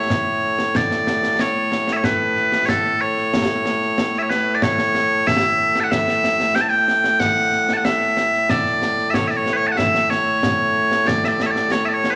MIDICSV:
0, 0, Header, 1, 3, 480
1, 0, Start_track
1, 0, Tempo, 645161
1, 1516, Time_signature, 4, 2, 24, 8
1, 9043, End_track
2, 0, Start_track
2, 0, Title_t, "Bagpipes"
2, 0, Program_c, 0, 109
2, 0, Note_on_c, 0, 45, 89
2, 0, Note_on_c, 0, 57, 89
2, 0, Note_on_c, 0, 73, 89
2, 566, Note_off_c, 0, 73, 0
2, 566, Note_on_c, 0, 74, 92
2, 1047, Note_off_c, 0, 74, 0
2, 1047, Note_on_c, 0, 73, 93
2, 1432, Note_off_c, 0, 73, 0
2, 1432, Note_on_c, 0, 76, 68
2, 1462, Note_off_c, 0, 76, 0
2, 1462, Note_on_c, 0, 73, 68
2, 1524, Note_off_c, 0, 73, 0
2, 1524, Note_on_c, 0, 71, 93
2, 1978, Note_off_c, 0, 71, 0
2, 1978, Note_on_c, 0, 73, 87
2, 2002, Note_off_c, 0, 73, 0
2, 2002, Note_on_c, 0, 69, 87
2, 2241, Note_off_c, 0, 69, 0
2, 2241, Note_on_c, 0, 73, 99
2, 3113, Note_off_c, 0, 73, 0
2, 3113, Note_on_c, 0, 76, 68
2, 3142, Note_off_c, 0, 76, 0
2, 3142, Note_on_c, 0, 73, 68
2, 3197, Note_off_c, 0, 73, 0
2, 3197, Note_on_c, 0, 71, 101
2, 3384, Note_off_c, 0, 71, 0
2, 3384, Note_on_c, 0, 74, 73
2, 3442, Note_off_c, 0, 74, 0
2, 3442, Note_on_c, 0, 73, 105
2, 3919, Note_off_c, 0, 73, 0
2, 3919, Note_on_c, 0, 76, 105
2, 4317, Note_off_c, 0, 76, 0
2, 4317, Note_on_c, 0, 81, 77
2, 4342, Note_off_c, 0, 81, 0
2, 4342, Note_on_c, 0, 78, 77
2, 4400, Note_off_c, 0, 78, 0
2, 4400, Note_on_c, 0, 76, 103
2, 4874, Note_off_c, 0, 76, 0
2, 4874, Note_on_c, 0, 79, 106
2, 4919, Note_off_c, 0, 79, 0
2, 4919, Note_on_c, 0, 81, 89
2, 4982, Note_off_c, 0, 81, 0
2, 4982, Note_on_c, 0, 79, 109
2, 5353, Note_off_c, 0, 79, 0
2, 5353, Note_on_c, 0, 78, 115
2, 5753, Note_off_c, 0, 78, 0
2, 5753, Note_on_c, 0, 81, 69
2, 5780, Note_off_c, 0, 81, 0
2, 5780, Note_on_c, 0, 78, 69
2, 5841, Note_off_c, 0, 78, 0
2, 5841, Note_on_c, 0, 76, 100
2, 6325, Note_off_c, 0, 76, 0
2, 6325, Note_on_c, 0, 74, 104
2, 6773, Note_off_c, 0, 74, 0
2, 6773, Note_on_c, 0, 76, 88
2, 6802, Note_off_c, 0, 76, 0
2, 6802, Note_on_c, 0, 73, 88
2, 6899, Note_off_c, 0, 73, 0
2, 6899, Note_on_c, 0, 76, 65
2, 6925, Note_off_c, 0, 76, 0
2, 6925, Note_on_c, 0, 74, 65
2, 6967, Note_off_c, 0, 74, 0
2, 6967, Note_on_c, 0, 73, 95
2, 7093, Note_off_c, 0, 73, 0
2, 7093, Note_on_c, 0, 71, 72
2, 7119, Note_off_c, 0, 71, 0
2, 7119, Note_on_c, 0, 73, 106
2, 7196, Note_off_c, 0, 73, 0
2, 7196, Note_on_c, 0, 81, 69
2, 7230, Note_off_c, 0, 81, 0
2, 7230, Note_on_c, 0, 78, 69
2, 7272, Note_off_c, 0, 78, 0
2, 7272, Note_on_c, 0, 76, 98
2, 7513, Note_off_c, 0, 76, 0
2, 7513, Note_on_c, 0, 73, 93
2, 8236, Note_off_c, 0, 73, 0
2, 8236, Note_on_c, 0, 74, 103
2, 8370, Note_off_c, 0, 74, 0
2, 8370, Note_on_c, 0, 76, 65
2, 8392, Note_off_c, 0, 76, 0
2, 8392, Note_on_c, 0, 74, 87
2, 8501, Note_off_c, 0, 74, 0
2, 8501, Note_on_c, 0, 76, 66
2, 8527, Note_off_c, 0, 76, 0
2, 8527, Note_on_c, 0, 73, 66
2, 8561, Note_off_c, 0, 73, 0
2, 8561, Note_on_c, 0, 74, 89
2, 8717, Note_off_c, 0, 74, 0
2, 8717, Note_on_c, 0, 73, 94
2, 8818, Note_off_c, 0, 73, 0
2, 8818, Note_on_c, 0, 76, 68
2, 8845, Note_off_c, 0, 76, 0
2, 8845, Note_on_c, 0, 74, 68
2, 8881, Note_off_c, 0, 74, 0
2, 8881, Note_on_c, 0, 73, 99
2, 9006, Note_off_c, 0, 73, 0
2, 9006, Note_on_c, 0, 71, 71
2, 9034, Note_off_c, 0, 71, 0
2, 9043, Note_off_c, 0, 45, 0
2, 9043, Note_off_c, 0, 57, 0
2, 9043, End_track
3, 0, Start_track
3, 0, Title_t, "Drums"
3, 75, Note_on_c, 9, 35, 56
3, 75, Note_on_c, 9, 38, 93
3, 150, Note_off_c, 9, 35, 0
3, 150, Note_off_c, 9, 38, 0
3, 436, Note_on_c, 9, 38, 72
3, 510, Note_off_c, 9, 38, 0
3, 556, Note_on_c, 9, 35, 57
3, 556, Note_on_c, 9, 38, 92
3, 631, Note_off_c, 9, 35, 0
3, 631, Note_off_c, 9, 38, 0
3, 677, Note_on_c, 9, 38, 65
3, 751, Note_off_c, 9, 38, 0
3, 797, Note_on_c, 9, 38, 81
3, 871, Note_off_c, 9, 38, 0
3, 916, Note_on_c, 9, 38, 63
3, 990, Note_off_c, 9, 38, 0
3, 1036, Note_on_c, 9, 38, 95
3, 1110, Note_off_c, 9, 38, 0
3, 1278, Note_on_c, 9, 38, 73
3, 1353, Note_off_c, 9, 38, 0
3, 1395, Note_on_c, 9, 38, 70
3, 1470, Note_off_c, 9, 38, 0
3, 1516, Note_on_c, 9, 35, 58
3, 1516, Note_on_c, 9, 38, 92
3, 1591, Note_off_c, 9, 35, 0
3, 1591, Note_off_c, 9, 38, 0
3, 1757, Note_on_c, 9, 38, 27
3, 1832, Note_off_c, 9, 38, 0
3, 1876, Note_on_c, 9, 38, 69
3, 1951, Note_off_c, 9, 38, 0
3, 1997, Note_on_c, 9, 35, 58
3, 1997, Note_on_c, 9, 38, 101
3, 2072, Note_off_c, 9, 35, 0
3, 2072, Note_off_c, 9, 38, 0
3, 2118, Note_on_c, 9, 38, 25
3, 2192, Note_off_c, 9, 38, 0
3, 2361, Note_on_c, 9, 38, 29
3, 2436, Note_off_c, 9, 38, 0
3, 2482, Note_on_c, 9, 35, 57
3, 2482, Note_on_c, 9, 38, 97
3, 2556, Note_off_c, 9, 35, 0
3, 2556, Note_off_c, 9, 38, 0
3, 2601, Note_on_c, 9, 38, 27
3, 2675, Note_off_c, 9, 38, 0
3, 2720, Note_on_c, 9, 38, 76
3, 2795, Note_off_c, 9, 38, 0
3, 2841, Note_on_c, 9, 38, 26
3, 2916, Note_off_c, 9, 38, 0
3, 2961, Note_on_c, 9, 38, 99
3, 3036, Note_off_c, 9, 38, 0
3, 3079, Note_on_c, 9, 38, 26
3, 3154, Note_off_c, 9, 38, 0
3, 3202, Note_on_c, 9, 38, 72
3, 3277, Note_off_c, 9, 38, 0
3, 3439, Note_on_c, 9, 35, 58
3, 3439, Note_on_c, 9, 38, 95
3, 3513, Note_off_c, 9, 35, 0
3, 3513, Note_off_c, 9, 38, 0
3, 3560, Note_on_c, 9, 38, 62
3, 3634, Note_off_c, 9, 38, 0
3, 3680, Note_on_c, 9, 38, 66
3, 3754, Note_off_c, 9, 38, 0
3, 3923, Note_on_c, 9, 35, 55
3, 3923, Note_on_c, 9, 38, 89
3, 3998, Note_off_c, 9, 35, 0
3, 3998, Note_off_c, 9, 38, 0
3, 4281, Note_on_c, 9, 38, 73
3, 4356, Note_off_c, 9, 38, 0
3, 4402, Note_on_c, 9, 35, 53
3, 4402, Note_on_c, 9, 38, 88
3, 4477, Note_off_c, 9, 35, 0
3, 4477, Note_off_c, 9, 38, 0
3, 4523, Note_on_c, 9, 38, 62
3, 4597, Note_off_c, 9, 38, 0
3, 4642, Note_on_c, 9, 38, 75
3, 4717, Note_off_c, 9, 38, 0
3, 4761, Note_on_c, 9, 38, 64
3, 4835, Note_off_c, 9, 38, 0
3, 4880, Note_on_c, 9, 38, 91
3, 4955, Note_off_c, 9, 38, 0
3, 5120, Note_on_c, 9, 38, 67
3, 5194, Note_off_c, 9, 38, 0
3, 5239, Note_on_c, 9, 38, 70
3, 5314, Note_off_c, 9, 38, 0
3, 5357, Note_on_c, 9, 35, 57
3, 5357, Note_on_c, 9, 38, 96
3, 5431, Note_off_c, 9, 35, 0
3, 5431, Note_off_c, 9, 38, 0
3, 5597, Note_on_c, 9, 38, 26
3, 5672, Note_off_c, 9, 38, 0
3, 5718, Note_on_c, 9, 38, 72
3, 5793, Note_off_c, 9, 38, 0
3, 5839, Note_on_c, 9, 38, 96
3, 5914, Note_off_c, 9, 38, 0
3, 5959, Note_on_c, 9, 38, 26
3, 6034, Note_off_c, 9, 38, 0
3, 6078, Note_on_c, 9, 38, 72
3, 6152, Note_off_c, 9, 38, 0
3, 6200, Note_on_c, 9, 38, 27
3, 6275, Note_off_c, 9, 38, 0
3, 6319, Note_on_c, 9, 35, 59
3, 6319, Note_on_c, 9, 38, 92
3, 6394, Note_off_c, 9, 35, 0
3, 6394, Note_off_c, 9, 38, 0
3, 6441, Note_on_c, 9, 38, 27
3, 6516, Note_off_c, 9, 38, 0
3, 6560, Note_on_c, 9, 38, 77
3, 6635, Note_off_c, 9, 38, 0
3, 6681, Note_on_c, 9, 38, 24
3, 6756, Note_off_c, 9, 38, 0
3, 6801, Note_on_c, 9, 35, 53
3, 6801, Note_on_c, 9, 38, 94
3, 6875, Note_off_c, 9, 35, 0
3, 6875, Note_off_c, 9, 38, 0
3, 6922, Note_on_c, 9, 38, 27
3, 6997, Note_off_c, 9, 38, 0
3, 7040, Note_on_c, 9, 38, 67
3, 7114, Note_off_c, 9, 38, 0
3, 7280, Note_on_c, 9, 35, 55
3, 7280, Note_on_c, 9, 38, 94
3, 7355, Note_off_c, 9, 35, 0
3, 7355, Note_off_c, 9, 38, 0
3, 7401, Note_on_c, 9, 38, 66
3, 7475, Note_off_c, 9, 38, 0
3, 7521, Note_on_c, 9, 38, 70
3, 7595, Note_off_c, 9, 38, 0
3, 7761, Note_on_c, 9, 35, 56
3, 7761, Note_on_c, 9, 38, 99
3, 7835, Note_off_c, 9, 35, 0
3, 7835, Note_off_c, 9, 38, 0
3, 8120, Note_on_c, 9, 38, 72
3, 8194, Note_off_c, 9, 38, 0
3, 8243, Note_on_c, 9, 35, 54
3, 8243, Note_on_c, 9, 38, 91
3, 8317, Note_off_c, 9, 35, 0
3, 8317, Note_off_c, 9, 38, 0
3, 8364, Note_on_c, 9, 38, 64
3, 8438, Note_off_c, 9, 38, 0
3, 8481, Note_on_c, 9, 38, 75
3, 8555, Note_off_c, 9, 38, 0
3, 8600, Note_on_c, 9, 38, 59
3, 8674, Note_off_c, 9, 38, 0
3, 8717, Note_on_c, 9, 38, 94
3, 8791, Note_off_c, 9, 38, 0
3, 8958, Note_on_c, 9, 38, 69
3, 9032, Note_off_c, 9, 38, 0
3, 9043, End_track
0, 0, End_of_file